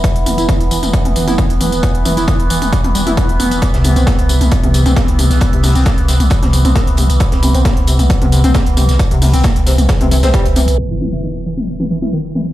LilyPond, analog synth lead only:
\new Staff \with { instrumentName = "Analog synth lead" } { \clef bass \time 4/4 \key c \lydian \tempo 4 = 134 r8 e16 e'16 dis16 r16 e16 r8. e16 e'16 dis16 r16 e16 r16 | r8 e16 e'16 dis16 r16 e16 r8. g16 e'16 b16 r16 b16 r16 | r16 c16 c16 c'16 ais16 r16 c16 r8 c16 c16 c'16 ais16 r16 c16 r16 | r16 c16 c16 c'16 ais16 r16 c16 r8 c16 c16 c'16 ais16 r16 c16 r16 |
r16 c16 c16 c'16 ais16 r16 c16 r8 c16 c16 c'16 ais16 r16 c16 r16 | r16 c16 c16 c'16 ais16 r16 c16 r8 c16 c16 c'16 g16 r16 c16 r16 | r16 e16 e16 e'16 dis16 r16 e16 r8 e16 e16 e'16 dis16 r16 e16 r16 | }